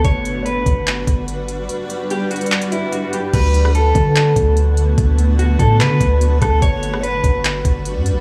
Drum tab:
CC |--------------------------------|--------------------------------|x-------------------------------|--------------------------------|
HH |x---x---x---x---x---x---x---x---|x---x---x---xxxxx-x-x---x---x---|x---x---x---x---x---x---x---x---|x---x---x---x---x---x---x---x---|
CP |----------------x---------------|----------------x---------------|----------------x---------------|----------------x---------------|
SD |--------------------------------|--------------------------------|------r-------------------------|----------------------------r---|
BD |o-----------o-------o-----------|--------------------------------|o-----------o-------o-----------|o-----------o-------o-------o---|

CC |--------------------------------|
HH |x---x---x---x---x---x---x---x---|
CP |----------------x---------------|
SD |------r-------------------------|
BD |o-----------o-------o-----------|